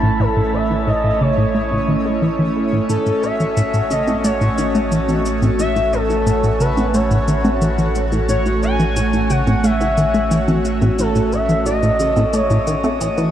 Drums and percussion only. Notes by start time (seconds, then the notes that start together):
2.90 cabasa
3.06 cabasa
3.23 cabasa
3.40 cabasa
3.57 cabasa
3.74 cabasa
3.91 cabasa
4.07 high conga, cabasa
4.24 cabasa
4.41 cabasa
4.58 cabasa
4.75 cabasa
4.92 cabasa
5.09 high conga, cabasa
5.25 cabasa
5.42 high conga, cabasa
5.59 cabasa
5.76 cabasa
5.93 cabasa
6.10 cabasa
6.27 cabasa
6.44 cabasa
6.60 cabasa
6.77 high conga, cabasa
6.94 cabasa
7.11 cabasa
7.28 cabasa
7.45 high conga, cabasa
7.62 cabasa
7.78 cabasa
7.95 cabasa
8.12 cabasa
8.29 cabasa
8.46 cabasa
8.63 cabasa
8.80 cabasa
8.96 cabasa
9.13 cabasa
9.30 cabasa
9.47 high conga, cabasa
9.64 cabasa
9.81 cabasa
9.97 cabasa
10.14 cabasa
10.31 cabasa
10.48 high conga, cabasa
10.65 cabasa
10.82 high conga, cabasa
10.99 cabasa
11.15 cabasa
11.32 cabasa
11.49 cabasa
11.66 cabasa
11.83 cabasa
12.00 cabasa
12.16 high conga, cabasa
12.33 cabasa
12.50 cabasa
12.67 cabasa
12.84 high conga, cabasa
13.01 cabasa
13.18 cabasa